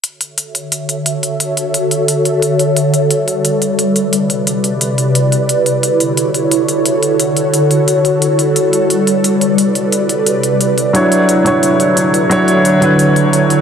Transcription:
0.04 D3 F#4 A4 C#5 E5, closed hi-hat
0.21 closed hi-hat
0.38 closed hi-hat
0.55 closed hi-hat
0.72 closed hi-hat
0.89 closed hi-hat
1.06 closed hi-hat
1.23 closed hi-hat
1.40 closed hi-hat
1.57 closed hi-hat
1.74 closed hi-hat
1.91 closed hi-hat
2.08 closed hi-hat
2.25 closed hi-hat
2.42 closed hi-hat
2.59 closed hi-hat
2.77 closed hi-hat
2.94 closed hi-hat
3.11 closed hi-hat
3.28 closed hi-hat
3.45 closed hi-hat
3.62 closed hi-hat
3.79 closed hi-hat
3.96 E4, closed hi-hat
4.13 closed hi-hat
4.30 closed hi-hat
4.47 closed hi-hat
4.64 closed hi-hat
4.81 closed hi-hat
4.98 closed hi-hat
5.15 closed hi-hat
5.32 closed hi-hat
5.49 D3 F#4 A4 C#5, closed hi-hat
5.66 closed hi-hat
5.83 closed hi-hat
6.00 closed hi-hat
6.17 closed hi-hat
6.34 closed hi-hat
6.51 closed hi-hat
6.69 closed hi-hat
6.86 closed hi-hat
7.03 closed hi-hat
7.20 closed hi-hat
7.37 closed hi-hat
7.54 closed hi-hat
7.71 closed hi-hat
7.88 closed hi-hat
8.05 closed hi-hat
8.22 B4 D5, closed hi-hat
8.39 closed hi-hat
8.56 closed hi-hat
8.73 closed hi-hat
8.90 closed hi-hat
9.07 closed hi-hat
9.24 closed hi-hat
9.41 E4, closed hi-hat
9.58 closed hi-hat
9.75 closed hi-hat
9.92 closed hi-hat
10.09 closed hi-hat
10.27 closed hi-hat
10.43 closed hi-hat
10.61 closed hi-hat
10.78 closed hi-hat
10.93 D3 F#3 D4 E4 F#4 A4 C#5, closed hi-hat
11.12 closed hi-hat
11.29 closed hi-hat
11.44 F#3 D4 E4 C#5, closed hi-hat
11.63 closed hi-hat
11.80 closed hi-hat
11.97 closed hi-hat
12.14 closed hi-hat
12.29 F#3 D4 E4 C#5, closed hi-hat
12.48 closed hi-hat
12.65 closed hi-hat
12.81 F#3 D4 E4 B4, closed hi-hat
12.99 closed hi-hat
13.16 closed hi-hat
13.33 closed hi-hat
13.50 closed hi-hat

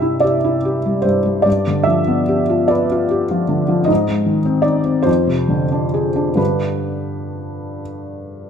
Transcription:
Already playing: C2 G2 G3 E4 G4 E5 G5
0.02 E4
0.20 G4 D5
0.44 E4
0.65 G4
0.86 G3
1.02 G2 C5
1.25 G3
1.42 G2 D5
1.67 D3
1.83 F3 E5
2.07 B3
2.29 G4
2.49 F4
2.68 B4 D5
2.92 F4
3.11 G4
3.31 F3
3.49 D3
3.68 F3
3.84 G#2 D#5
4.08 G#3
4.26 D#3
4.45 C4
4.62 D#4 D5
4.85 C4
5.03 F2 C5
5.27 C3
5.48 D3
5.72 D4
5.94 G#4
6.16 D4
6.35 G2 D3 D4 B4
6.39 G4

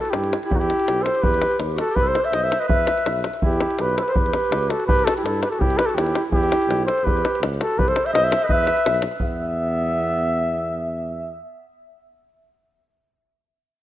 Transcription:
0.00 F#4 A4
0.05 davul high
0.09 E4 G4, davul high
0.14 G2
0.24 davul high
0.33 davul high
0.43 E4 G4, davul high
0.50 E2, davul low
0.55 D#4 F#4
0.59 E4 G4, davul high
0.70 davul high
0.80 davul high
0.88 B1, davul high
1.00 A4 C5
1.06 davul high
1.15 G4, davul high
1.23 E2 B4, davul low
1.34 davul high
1.42 davul high
1.52 davul high
1.59 D#2, davul high
1.75 F#4, davul high
1.79 A4
1.90 G4
1.95 C2 B4, davul low
2.02 A4
2.07 C5, davul high
2.15 davul high
2.20 C5
2.25 E5, davul high
2.30 B1 C5, davul high
2.34 D#5
2.42 C5 E5
2.52 davul high
2.60 B4 D#5, davul high
2.68 E2 B4 E5, davul low
2.87 davul high
2.98 davul high
3.06 B1, davul high
3.24 davul high
3.33 davul high
3.42 E2 E4 G4, davul low
3.53 davul high
3.60 davul high
3.71 davul high
3.79 B1 G4 B4, davul high
3.97 A4 B4 C5, davul high
4.03 G4
4.07 A4 C5, davul high
4.13 E2 G4 B4, davul low
4.26 davul high
4.33 davul high
4.51 C#2, davul high
4.69 F#4 A4, davul high
4.80 davul high
4.87 C2 G4 B4, davul low
4.99 davul high
5.05 F#4 A4, davul high
5.17 E4 G4, davul high
5.24 G2 E4 A4, davul high
5.42 G4 B4, davul high
5.51 F#4 A4, davul high
5.60 C2 E4 G4, davul low
5.70 davul high
5.78 G4 B4, davul high
5.86 F#4 A4, davul high
5.95 D#2 G4, davul high
5.99 E4
6.06 davul high
6.15 davul high
6.31 E2 G4, davul low
6.35 E4
6.43 davul high
6.52 davul high
6.62 davul high
6.67 B1, davul high
6.86 A4 C5, davul high
6.98 davul high
7.03 E2 G4 B4, davul low
7.17 davul high
7.25 davul high
7.35 davul high
7.41 C#2, davul high
7.60 F#4 A4, davul high
7.71 davul high
7.77 C2 G4 B4, davul low
7.88 A4 C5, davul high
7.96 davul high
8.06 C5 E5, davul high
8.13 B1 C5 D#5, davul high
8.24 C5 E5
8.32 davul high
8.42 A4 B4 D#5, davul high
8.46 E2 B4 D#5, davul low
8.53 E5
8.67 davul high
8.77 davul high
8.86 B1, davul high
8.94 davul high
9.02 davul high
9.11 davul high
9.20 E2 B3 E5, davul low

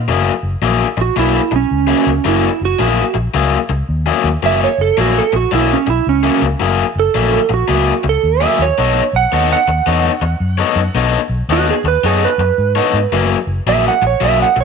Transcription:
0.08 F#1 F#3 A#3 E4 G#4
0.43 F#1
0.62 A#1 F#3 A#3 E4 G#4
0.97 A#1, muted overdriven electric guitar stroke
1.01 F#4
1.16 B1 F#3 A#3 E4 G#4
1.51 B1, muted overdriven electric guitar stroke
1.56 C#4
1.71 C#2
1.87 F#3 A#3 E4 G#4
2.07 C#2
2.25 F#1 F#3 A#3 E4 G#4
2.61 F#1 F#4
2.79 A#1 F#3 A#3 E4 G#4
3.14 A#1, muted overdriven electric guitar stroke
3.34 C#2 F#3 A#3 E4 G#4
3.69 C#2, muted overdriven electric guitar stroke
3.89 D#2
4.06 F#3 A#3 E4 G#4
4.24 D#2
4.43 F#1 F#3 A#3 E4 G#4 E5
4.64 C#5
4.78 F#1 A4
4.97 A#1 F#3 A#3 E4 F#4 G#4
5.18 A4
5.33 A#1 F#4, muted overdriven electric guitar stroke
5.52 B1 F#3 A#3 E4 G#4
5.73 C#4
5.87 B1 E4, muted overdriven electric guitar stroke
6.07 C#2 C#4
6.23 F#3 A#3 E4 G#4
6.42 C#2
6.60 F#1 F#3 A#3 E4 G#4
6.96 F#1
7.00 A4
7.15 A#1 F#3 A#3 E4 G#4
7.49 A#1, muted overdriven electric guitar stroke
7.54 F#4
7.68 C#2 F#3 A#3 E4 G#4
8.04 C#2, muted overdriven electric guitar stroke
8.09 A4
8.23 D#2
8.40 F#3 A#3 E4 G#4 E5
8.59 D#2 C#5
8.78 B1 B3 D#4 A4 C#5
9.13 B1 F#5
9.32 D#2 B3 D#4 A4 C#5
9.52 F#5
9.68 D#2, muted overdriven electric guitar stroke
9.86 E2 B3 D#4 A4 C#5
10.21 E2, muted overdriven electric guitar stroke
10.40 F#2
10.58 B3 D#4 A4 C#5
10.76 F#2
10.94 B1 B3 D#4 A4 C#5
11.29 B1
11.49 D#2 B3 D#4 F#4 A4 C#5
11.70 G#4
11.84 D#2 B4, muted overdriven electric guitar stroke
12.03 F#2 B3 D#4 G#4 A4 C#5
12.25 B4
12.38 F#2, muted overdriven electric guitar stroke
12.58 G#2
12.75 B3 D#4 A4 C#5
12.93 G#2
13.12 F#1 F#3 A#3 E4 G#4
13.47 F#1
13.66 A#1 F#3 A#3 E4 G#4 E5
13.88 F#5
14.02 A#1, muted overdriven electric guitar stroke
14.07 C#5
14.20 B1 F#3 A#3 E4 G#4
14.25 E5
14.42 F#5
14.56 B1, muted overdriven electric guitar stroke
14.60 C#5

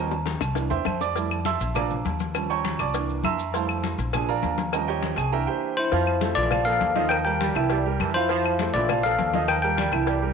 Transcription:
Already playing: D#2 F3 G3 C#4 A#4 D#5 G5 A#5
0.11 high bongo, high conga, low agogo, maracas
0.26 cowbell, low bongo, high conga, high timbale, maracas
0.41 C2, cowbell, low bongo, low agogo, claves, maracas
0.55 E3 A#3 D4, cowbell, low bongo, high conga, low timbale, low agogo, maracas
0.70 E2 C5 E5 G5 C6, low bongo, high conga, low timbale, maracas
0.85 F2, cowbell, low bongo, high conga, low agogo, claves, maracas
1.01 D5 D6, low bongo, high conga, low timbale, low agogo, maracas
1.15 G3 A3 E4, cowbell, high conga, low agogo, maracas
1.31 high conga, low agogo, claves, maracas
1.45 E5 A5 C6 E6, cowbell, high conga, maracas
1.60 A#1, cowbell, high conga, maracas
1.75 F3 A#3 D4 D5 F5 A#5 D6, cowbell, high conga, low conga, low agogo, claves, maracas
1.90 high conga, low conga, maracas
2.05 D#2, cowbell, high conga, low timbale, low agogo, maracas
2.20 cowbell, high conga, maracas
2.34 F3 G3 C#4, cowbell, high conga, low agogo, claves, maracas
2.50 C#5 G5 A#5 C#6, high conga, low agogo, maracas
2.64 cowbell, high conga, maracas
2.79 C2 D5 D6, cowbell, low agogo, claves, maracas
2.94 E3 A#3 D4, cowbell, high conga, low agogo, maracas
3.09 high conga, maracas
3.23 F2 E5 A#5 C6 E6, cowbell, high conga, low agogo, claves, maracas
3.38 low agogo, maracas
3.53 G3 A3 E4 C5 F5 A5 C6, cowbell, high conga, low agogo, maracas
3.68 high conga, low agogo, claves, maracas
3.84 cowbell, high conga, maracas
3.98 A#1, cowbell, high conga, maracas
4.13 F3 A#3 D4 G#4 G#5, cowbell, high conga, low conga, low agogo, claves, maracas
4.29 A#4 D5 F5 A#5, high conga, maracas
4.43 D#2, cowbell, high conga, low timbale, low agogo, maracas
4.58 cowbell, high conga, maracas
4.72 F3 G3 C#4 A#4 D#5 G5 A#5, cowbell, high conga, low agogo, claves, maracas
4.87 G4 C#5 D#5 G5, high conga, low agogo, maracas
5.02 cowbell, high conga, maracas
5.16 C2 G#4 G#5, cowbell, low agogo, claves, maracas
5.32 E3 A#3 D4 A#4 E5 G5 A#5
5.47 G4 C5 E5 G5
5.77 E4 C5
5.91 F2 F3 F4 F5, cowbell, high conga, low agogo
6.06 high conga, low agogo, claves
6.21 A3 A4 C5, cowbell, high conga
6.35 A#1 E3 F4 D5, cowbell, high conga
6.51 F3 F4 F5, cowbell, high conga, low conga, low agogo, claves
6.65 F3 A#3 A4 A#4 D5 F5, high conga
6.80 D#2, cowbell, high conga, low agogo
6.96 D#3 F3 D#4 D#5, cowbell, high conga
7.09 A#4 G5, cowbell, high conga, low agogo, claves
7.25 G3 G4 A#4 G5, high conga, low agogo
7.41 G3, cowbell, high conga
7.55 C2 E3 E4 E5, cowbell, low agogo, claves
7.70 G3, cowbell, high conga, low agogo
7.85 G3 G4 A#4, high conga
8.00 F2 E3, cowbell, high conga, low timbale, low agogo, claves
8.14 F3 E4 F4 C5 F5, high conga, low agogo
8.29 F3 F4 F5, cowbell, high conga, low agogo
8.44 high conga, low agogo, claves
8.59 A3 A4 C5, cowbell, high conga
8.74 A#1 E3 F4 D5, cowbell, high conga
8.88 F3 F4 F5, cowbell, high conga, low conga, low agogo, claves
9.03 F3 A#3 A4 A#4 D5 F5, high conga
9.18 D#2, cowbell, high conga, low timbale, low agogo
9.33 D#3 F3 D#4 D#5, cowbell, high conga
9.48 A#4 G5, cowbell, high conga, low agogo, claves
9.62 G3 G4 A#4 G5, high conga, low agogo
9.77 G3, cowbell, high conga
9.92 C2 E3 E4 E5, cowbell, low agogo, claves
10.07 G3, cowbell, high conga, low agogo
10.22 G3 G4 A#4, high conga

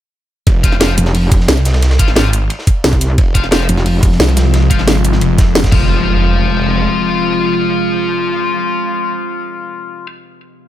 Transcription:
0.47 F1, kick, closed hi-hat, ride
0.63 F4 C5 F5, kick, closed hi-hat, ride, shaker
0.72 snare, ride
0.80 F4 C5 F5, snare, closed hi-hat, ride
0.98 F1, closed hi-hat, ride, shaker
1.06 snare
1.15 closed hi-hat, open hi-hat
1.31 kick, closed hi-hat, ride, shaker
1.40 snare
1.48 C2, snare, closed hi-hat, ride
1.57 snare, shaker
1.65 snare, closed hi-hat, ride, shaker
1.74 snare, ride
1.82 snare, closed hi-hat, ride
1.90 snare, ride
1.99 G#1 F4 C5 F5, kick, closed hi-hat, ride, shaker
2.08 snare
2.15 F4 C5 F5, snare, closed hi-hat, ride
2.33 closed hi-hat, ride, shaker
2.50 closed hi-hat, ride
2.59 snare
2.67 kick, closed hi-hat, ride, shaker
2.84 C2, snare, closed hi-hat, ride
2.92 kick, snare, shaker
3.01 snare, closed hi-hat, ride, shaker
3.18 F1 C3 F3 G#3 F4, kick, closed hi-hat, ride
3.35 F4 C5 F5, kick, closed hi-hat, ride, shaker
3.44 snare, ride
3.51 F4 C5 F5, snare, closed hi-hat, ride
3.69 F1, closed hi-hat, ride, shaker
3.77 snare
3.86 closed hi-hat, open hi-hat
4.03 kick, closed hi-hat, ride, shaker
4.12 snare
4.20 C2, snare, closed hi-hat, ride
4.28 snare, shaker
4.37 snare, closed hi-hat, ride, shaker
4.54 snare, closed hi-hat, ride
4.62 ride
4.70 G#1 F4 C5 F5, kick, closed hi-hat, ride, shaker
4.79 snare
4.88 snare, closed hi-hat, ride
5.04 closed hi-hat, ride, shaker
5.13 snare
5.21 F1, closed hi-hat, ride
5.38 kick, snare, closed hi-hat, ride, shaker
5.55 snare, closed hi-hat, ride
5.64 kick, snare, ride, shaker
5.72 F1 C3 F3 G#3 F4 C5 F5, kick, crash, impact

